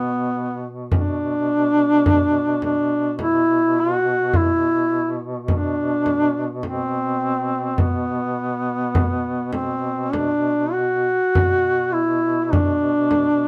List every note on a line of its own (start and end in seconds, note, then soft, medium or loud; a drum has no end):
0.00 11.17 B2 soft
0.00 0.65 B3 medium
0.92 2.59 D4 medium
0.92 frame drum medium
2.06 frame drum medium
2.62 3.16 D4 medium
2.62 frame drum soft
3.19 3.81 E4 medium
3.19 frame drum soft
3.80 4.37 F#4 medium
4.33 5.23 E4 medium
4.33 frame drum medium
5.48 6.60 D4 medium
5.48 frame drum medium
6.06 frame drum soft
6.63 7.82 C4 medium
6.63 frame drum soft
7.78 9.53 B3 medium
7.78 frame drum medium
8.95 frame drum medium
9.53 10.14 C4 medium
9.53 frame drum soft
10.12 10.74 D4 medium
10.12 frame drum medium
10.72 11.94 F#4 medium
11.34 13.48 B2 soft
11.34 frame drum medium
11.93 12.45 E4 medium
12.45 12.54 E4 medium
12.52 13.48 D4 medium
12.52 frame drum medium
13.11 frame drum medium